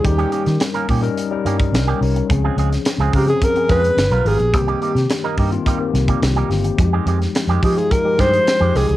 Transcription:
<<
  \new Staff \with { instrumentName = "Alto saxophone" } { \time 4/4 \key ees \mixolydian \tempo 4 = 107 g'4 r2. | r4. g'16 aes'16 bes'8 ces''4 aes'8 | g'4 r2. | r4. g'16 aes'16 bes'8 c''4 aes'8 | }
  \new Staff \with { instrumentName = "Tine electric piano" } { \time 4/4 \key ees \mixolydian <g des' ees' a' bes'>4 r8. <g des' ees' bes'>16 r16 <g des' ees' bes'>8. r8 <g des' ees' des''>16 r16 | <f c' des' aes'>4 r8. <f c' des' aes'>16 r16 <f c' des' aes'>8. r8 <f b dis' g'>16 r16 | <des ees bes c' g'>4 r8. <ees bes c' f'>16 r16 <ees bes c' g'>8. r8 <ees bes c' g'>16 r16 | <f aes ees' ges' g'>4 r8. <f aes ees' f'>16 r16 <f aes ees' g'>8. r8 <f aes ees' g'>16 r16 | }
  \new Staff \with { instrumentName = "Clean electric guitar" } { \time 4/4 \key ees \mixolydian r16 <ees bes des' g'>16 <ees bes des' g'>16 r8 <ees bes des' bes'>16 <ees bes des' g'>16 r8. <ees bes des' g'>16 r8 <ees bes des' g'>16 r8 | r16 <aes c' f' aes'>16 <aes c' f' aes'>16 r8 <aes c' f' aes'>16 <aes c' f' bes'>16 r8. <aes c' f' aes'>16 r8 <g b f' ais'>16 <g b f' ais'>16 r16 | r16 <g bes ees' g'>16 <g bes ees' g'>16 r8 <g bes ees' bes'>16 <g bes ees' g'>16 r16 <g bes ees' g'>16 r8 <g bes ees' g'>16 r16 <g bes ees' g'>16 r8 | r16 <ees aes c' g'>16 <ees aes c' g'>16 r8 <ees aes c' g'>16 <ees aes c' aes'>16 r8. <ees aes c' g'>16 r8 <ees aes c' g'>16 <ees aes c' g'>16 r16 | }
  \new Staff \with { instrumentName = "Fingered electric bass" } { \clef bass \time 4/4 \key ees \mixolydian ees,8 r16 ees16 r8 bes,8 r8 g,8 c,8 c,8 | des,8 des,8 r16 des,16 des8 r8 f,8 g,,16 b,,16 aes,,16 ais,,16 | c,8 r16 c16 r8 g,8 r8 c,8 c,8 g,,8 | f,8 f,8 r16 f,16 f8 r8 g,8 r16 f,16 c,16 des,16 | }
  \new DrumStaff \with { instrumentName = "Drums" } \drummode { \time 4/4 <hh bd>16 hh16 hh16 <hh sn>16 <hh sn>16 hh16 <hho bd>16 hh16 hh8 hh16 <hh bd>16 <hh sn>8 hho16 hh16 | <hh bd>8 hh16 <hh sn>16 <hh sn>16 hh16 <hho bd>16 hh16 <hh bd>16 hh16 <hh bd sn>16 hh16 <hh sn>16 hh16 hho16 hh16 | <hh bd>16 hh16 hh16 <hh sn>16 <hh sn>8 <hho bd>16 hh16 <hh bd>8 <hh sn>16 <hh bd>16 <hh sn>16 hh16 <hho sn>16 hh16 | <hh bd>8 hh16 <hh sn>16 <hh sn>16 hh16 <hho bd>16 hh16 <hh bd>8 <hh bd sn>16 hh16 <hh sn>8 <hho sn>16 hh16 | }
>>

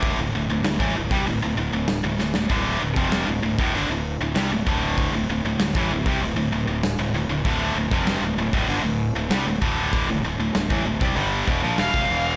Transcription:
<<
  \new Staff \with { instrumentName = "Lead electric guitar" } { \time 4/4 \key d \minor \tempo 4 = 97 r1 | r1 | r1 | r1 |
r2. f''4 | }
  \new Staff \with { instrumentName = "Distorted electric guitar" } { \clef bass \time 4/4 \key d \minor <d, a, d>16 <d, a,>16 <d, a,>16 <d, a,>16 <d, a,>16 <a, e>16 <d, a,>16 <c g>16 <d, a,>16 <d, a,>16 <d, a,>16 <d, a,>8 <d, a,>16 <d, a,>16 <d, a,>16 | <d, a, d>8 <d, a,>16 <f, c f>8 <d, a,>16 <d, a,>16 <d, a,>16 <g, d>16 <d, a,>8 <d, a,>16 <c g>16 <d, a,>16 <d, a, d>8~ | <d, a, d>16 <d, a,>16 <d, a,>16 <d, a,>16 <d, a,>16 <a, e>16 <d, a,>16 <c g>16 <d, a,>16 <d, a,>16 <d, a,>16 <d, a,>8 <d, a,>16 <d, a,>16 <d, a,>16 | <d, a, d>8 <d, a,>16 <f, c f>8 <d, a,>16 <d, a,>16 <d, a,>16 <g, d>16 <d, a,>8 <d, a,>16 <c g>16 <d, a,>16 <d, a, d>8~ |
<d, a, d>16 <d, a,>16 <d, a,>16 <d, a,>16 <d, a,>16 <a, e>16 <d, a,>16 <c g>16 <g, d g>8 <e, b,>16 <bes, f>16 <e, b,>16 <f, c>16 <e, b, e>8 | }
  \new Staff \with { instrumentName = "Fingered electric bass" } { \clef bass \time 4/4 \key d \minor d,,16 d,,16 d,,16 d,,16 d,,16 a,,16 d,,16 c,16 d,,16 d,,16 d,,16 d,,8 d,,16 d,,16 d,,16 | d,,8 d,,16 f,,8 d,,16 d,,16 d,,16 g,,16 d,,8 d,,16 c,16 d,,16 d,,8~ | d,,16 d,,16 d,,16 d,,16 d,,16 a,,16 d,,16 c,16 d,,16 d,,16 d,,16 d,,8 d,,16 d,,16 d,,16 | d,,8 d,,16 f,,8 d,,16 d,,16 d,,16 g,,16 d,,8 d,,16 c,16 d,,16 d,,8~ |
d,,16 d,,16 d,,16 d,,16 d,,16 a,,16 d,,16 c,16 g,,8 e,,16 bes,,16 e,,16 f,,16 e,,8 | }
  \new DrumStaff \with { instrumentName = "Drums" } \drummode { \time 4/4 <hho bd>4 <hho sn>16 bd8 bd16 hho4 <hho sn>8 sn16 sn16 | <hho bd>8. bd16 <hho sn>8. bd16 hho4 <hho sn>8 bd8 | <hho bd>4 <hho sn>16 bd8 bd16 hho4 <hho sn>4 | <hho bd>8. bd16 <hho sn>8. bd16 hho4 <hho sn>8 bd8 |
<hho bd>4 <hho sn>16 bd8 bd16 hho8 bd8 <hho sn>16 bd8. | }
>>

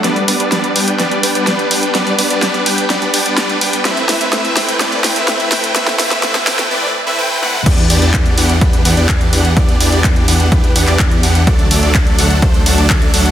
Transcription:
<<
  \new Staff \with { instrumentName = "Supersaw synth" } { \time 4/4 \key e \minor \tempo 4 = 126 <g b d' b' d''>8 <g b d' b' d''>16 <g b d' b' d''>16 <g b d' b' d''>8 <g b d' b' g''>8 <g b d' b' d''>8 <g b d' b' g''>16 <g b d' b' d''>16 <g b d' b' d''>8 <g b d' b' g''>8 | <g b d' b' d''>8 <g b d' b' d''>16 <g b d' b' d''>16 <g b d' b' d''>8 <g b d' b' g''>8 <g b d' b' d''>8 <g b d' b' g''>16 <g b d' b' d''>16 <g b d' b' d''>8 <g b d' b' g''>8 | <a c' e' b' e''>8 <a c' e' b' e''>16 <a c' e' b' e''>16 <a c' e' b' e''>8 <a c' e' b' g''>8 <a c' e' b' d''>8 <a c' e' b' g''>16 <a c' e' b' e''>16 <a c' e' b' e''>8 <a c' e' b' g''>8 | <a c' e' b' e''>8 <a c' e' b' e''>16 <a c' e' b' e''>16 <a c' e' b' e''>8 <a c' e' b' g''>8 <a c' e' b' d''>8 r16 <a c' e' b' e''>16 <a c' e' b' g''>8 <a c' e' b' fis''>8 |
<e b d' g' d''>8 <e b d' g' d''>16 <e b d' g' d''>16 <e b d' g' d''>8 <e b d' g' fis''>8 <e b d' g' b'>8 <e b d' g' fis''>16 <e b d' g' d''>16 <e b d' g' d''>8 <e b d' g' fis''>8 | <e b d' g' d''>8 <e b d' g' d''>16 <e b d' g' d''>16 <e b d' g' d''>8 <e b d' g' fis''>8 <e b d' g' b'>8 <e b d' g' fis''>16 <e b d' g' d''>16 <e b d' g' d''>8 <e b d' g' fis''>8 | <fis a d' a' d''>8 <fis a d' a' d''>16 <fis a d' a' d''>16 <fis a d' a' d''>8 <fis a d' a' fis''>8 <fis a d' a' c''>8 <fis a d' a' fis''>16 <fis a d' a' d''>16 <fis a d' a' d''>8 <fis a d' a' fis''>8 | }
  \new Staff \with { instrumentName = "Detuned saw bass" } { \clef bass \time 4/4 \key e \minor r1 | r1 | r1 | r1 |
e,8 e,16 e,16 r8 e,8 e,8 e,16 e,16 r8 e,8 | e,8 e,16 e,16 e,8 e,8 e,8 e,16 e,16 e,8 e,8 | d,8 d,16 d,16 r8 d,8 d,8 d,16 d,16 r8 d,8 | }
  \new DrumStaff \with { instrumentName = "Drums" } \drummode { \time 4/4 <hh sn>16 hh16 hho16 hh16 <hh sn>16 hh16 hho16 hh16 <hh sn>16 hh16 hho16 hh16 <hh sn>16 hh16 hho16 hh16 | <hh sn>16 hh16 hho16 hh16 <hh sn>16 hh16 hho16 hh16 <hh sn>16 hh16 hho16 hh16 <hh sn>16 hh16 hho16 hh16 | <hh sn>16 hh16 <hho sn>16 hh16 <hh sn>16 hh16 <hho sn>16 hh16 <hh sn>16 hh16 <hho sn>16 hh16 <hh sn>16 hh16 <hho sn>16 hh16 | <hh sn>16 <hh sn>16 <hho sn>16 <hh sn>16 <hh sn>16 <hh sn>16 <hho sn>16 <hh sn>16 r4 r8 tommh16 toml16 |
<cymc hh bd>16 hh16 hho16 hh16 <hc hh bd>16 hh16 hho16 hh16 <hh bd>16 hh16 hho16 hh16 <hc hh bd>16 hh16 hho16 hh16 | <hh bd>16 hh16 hho16 hh16 <hc hh bd>16 hh16 hho16 hh16 <hh bd>16 hh16 hho16 <hc hh>16 <hc hh bd>16 hh16 hho16 hh16 | <hh bd>16 hh16 hho16 hh16 <hc hh bd>16 hh16 hho16 hh16 <hh bd>16 hh16 hho16 hh16 <hc hh bd>16 hh16 hho16 hh16 | }
>>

